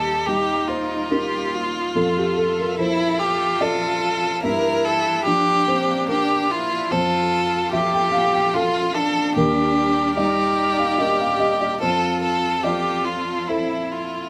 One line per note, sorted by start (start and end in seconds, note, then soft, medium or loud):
0.00 1.92 D#2 soft
0.00 1.96 G3 soft
0.00 1.96 A#3 soft
0.00 1.96 D#4 soft
0.00 0.30 G4 medium
0.00 0.28 A4 medium
0.00 0.65 D#5 medium
0.26 1.62 G3 soft
0.26 1.13 D#4 medium
0.26 0.69 G4 medium
0.68 2.78 F4 medium
0.68 1.08 C5 medium
1.11 1.92 D#4 soft
1.11 1.57 G4 medium
1.11 1.91 A#4 medium
1.55 2.78 F4 medium
1.95 4.39 F2 medium
1.95 6.89 F3 soft
1.95 2.15 A4 medium
1.95 4.44 A4 medium
1.95 4.43 E5 medium
2.17 2.36 G4 medium
2.37 2.56 A4 medium
2.60 2.78 A#4 medium
2.79 4.11 F3 soft
2.79 3.19 E4 medium
2.79 3.21 E4 medium
2.79 3.58 C5 medium
3.19 4.41 F4 medium
3.19 3.63 G4 medium
3.61 4.42 A4 medium
3.61 4.40 A4 soft
3.61 4.39 D5 medium
3.61 4.39 E5 soft
4.43 6.87 G2 medium
4.43 6.91 A#3 medium
4.43 6.91 D4 soft
4.43 5.27 E4 medium
4.43 4.86 A#4 medium
4.43 5.63 E5 medium
4.85 5.24 A4 medium
5.25 6.59 F3 medium
5.25 5.69 D4 medium
5.25 6.07 G4 medium
5.67 6.10 C4 medium
5.67 6.06 C5 medium
6.08 6.50 D4 medium
6.08 6.87 D4 soft
6.08 6.52 G4 medium
6.08 6.87 A#4 medium
6.51 6.93 E4 medium
6.51 6.93 F4 medium
6.90 9.32 F2 medium
6.90 9.32 F3 medium
6.90 9.36 F4 medium
6.90 7.74 F4 medium
6.90 9.36 A4 medium
6.90 7.72 A4 medium
6.90 7.68 C5 medium
7.72 9.04 F3 medium
7.72 8.56 G4 medium
7.72 7.91 E5 medium
7.93 8.12 G5 medium
8.12 8.31 F5 medium
8.33 8.52 G5 medium
8.53 8.96 F4 medium
8.53 9.32 F4 soft
8.53 8.97 F4 medium
8.53 9.33 A4 medium
8.53 9.32 F5 medium
8.95 10.17 D4 medium
8.95 9.35 A4 medium
9.36 11.77 D#2 medium
9.36 11.82 G3 medium
9.36 10.15 G4 medium
9.36 10.13 A#4 medium
9.36 11.82 A#4 medium
9.36 11.82 D5 medium
10.17 11.48 G3 medium
10.17 11.01 D#4 medium
10.17 11.78 G4 medium
10.17 10.75 D5 medium
10.78 10.97 F5 medium
10.98 11.77 D4 soft
10.98 11.81 G4 medium
10.98 11.78 A#4 soft
10.98 11.18 D#5 medium
11.20 11.39 F5 medium
11.39 11.59 D#5 medium
11.61 11.80 D5 medium
11.81 14.29 F2 medium
11.81 14.29 F3 soft
11.81 14.29 C4 soft
11.81 12.62 F4 medium
11.81 12.22 A4 medium
11.81 14.29 A4 soft
11.81 12.59 C5 medium
12.23 12.65 A4 medium
12.63 14.00 F3 soft
12.63 13.49 F4 medium
12.63 13.06 G4 medium
12.63 13.44 D5 medium
13.04 13.49 F4 soft
13.48 14.29 E4 soft
13.48 13.94 E4 soft
13.48 14.29 A4 soft
13.48 14.29 C5 soft
13.48 14.29 E5 soft
13.92 14.29 F4 soft